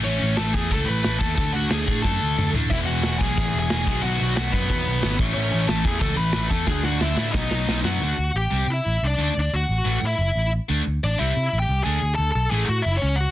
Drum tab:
CC |--------|--------|x------x|--------|
HH |--o-o-o-|o-o-----|--o-o-o-|--o-o-o-|
SD |--o---o-|--o-o---|--o---o-|--o---o-|
T2 |--------|------o-|--------|--------|
FT |--------|-------o|--------|--------|
BD |---oo--o|o--oo---|o--oo--o|---oo--o|

CC |x-------|--------|--------|--------|
HH |--o-o-o-|--------|--------|--------|
SD |--o---o-|oooooooo|--------|--------|
T2 |--------|--------|--------|--------|
FT |--------|--------|--------|--------|
BD |---oo--o|o---o---|--------|--------|

CC |--------|--------|
HH |--------|--------|
SD |--------|--------|
T2 |--------|--------|
FT |--------|--------|
BD |--------|--------|